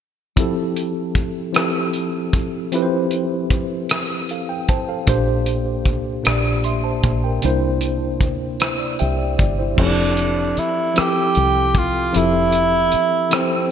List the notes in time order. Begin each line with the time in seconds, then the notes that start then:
0.36 F3 C4 E4 G4 A4, kick, closed hi-hat
0.76 closed hi-hat
1.15 kick, closed hi-hat
1.53 F3 C4 E4 G4, cross-stick, closed hi-hat
1.57 A4
1.94 closed hi-hat
2.33 kick, closed hi-hat
2.72 F3 C4 E4 G4 B4, closed hi-hat
2.82 C5
3.11 closed hi-hat
3.50 kick, closed hi-hat
3.89 cross-stick, closed hi-hat
4.29 A4 F5, closed hi-hat
4.49 G5
4.69 C5 A5, kick, closed hi-hat
4.89 A4 F5
5.06 A#1 A#2 A#3 D4 G4 C5, kick, closed hi-hat
5.46 closed hi-hat
5.86 C2, kick, closed hi-hat
6.23 A#1 A#2 A#3 D4 G4, cross-stick, closed hi-hat
6.27 D5
6.64 E5 C6, closed hi-hat
6.84 C5 A5
7.03 A#1, kick, closed hi-hat
7.24 A#4 G5
7.42 C2 C3 A#3 D4 E4 C5, closed hi-hat
7.81 closed hi-hat
8.21 D2, kick, closed hi-hat
8.60 E4 C5, cross-stick, closed hi-hat
8.80 D5
8.99 C2 G4 E5 G5, closed hi-hat
9.18 D5
9.38 G1 D5, kick, closed hi-hat
9.59 E4 C5
9.76 F1 F3 C4 D4 E4 G4 A4, kick, crash
10.17 closed hi-hat
10.57 E4, muted fingered electric bass stroke, closed hi-hat
10.94 F3 C4 E4 G4 A4, muted fingered electric bass stroke, cross-stick, closed hi-hat
10.99 G4
11.35 C2, closed hi-hat
11.75 F4, kick, closed hi-hat
12.12 F1 F3 C4 E4 G4, closed hi-hat
12.17 E4 A4
12.52 closed hi-hat
12.92 muted fingered electric bass stroke, closed hi-hat
13.30 F3 C4 E4 G4 A4, cross-stick, closed hi-hat
13.34 C4